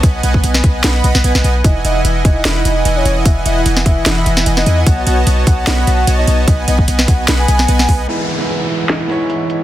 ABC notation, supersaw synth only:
X:1
M:4/4
L:1/16
Q:"Swing 16ths" 1/4=149
K:E
V:1 name="Supersaw synth"
[B,Bdg]2 [B,Bdfg]2 [B,Bdfg]2 [B,Bdfg]2 [B,Bdfb]2 [B,Bdfb] [B,Bdfb] [B,Bdfg] [B,Bdfg] [B,Bdfg] z | [E,Edfg]2 [E,Edfg]2 [E,Edfg]2 [E,Efg]2 [E,Edfb]2 [E,Edfg]2 [E,Edfg]2 [E,Edfg]2 | [Edfg]2 [E,Edfg]2 [E,Edfg]2 [E,Edfg]2 [E,Edfb]2 [E,Edfg]2 [E,Edfg]2 [E,Edfg]2 | [B,Fcda]2 [B,Fcda]2 [B,Fcda]2 [B,Fcda]2 [B,Fcdb]2 [B,Fcda]2 [B,Fcda]2 [B,Fcda]2 |
[B,d]2 [B,Bdfg]2 [B,Bdfg]2 [B,Bdg]2 [B,Bdfb]2 [B,Bdfg]2 [B,Bdfg]2 [B,Bdfg]2 | [E,Edfg]2 [E,Edfg]2 [E,Edfg]2 [E,Edf]2 [E,Ed]2 [E,Edfg]2 [E,Edfg]2 [E,Edfg]2 |]